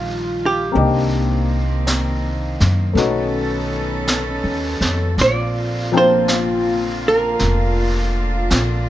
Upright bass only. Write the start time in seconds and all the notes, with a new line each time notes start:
Already playing: A#1
0.75 C2
2.61 F#2
2.95 B1
4.44 D#2
4.81 F2
5.18 A#1
7.41 F1
8.51 A#1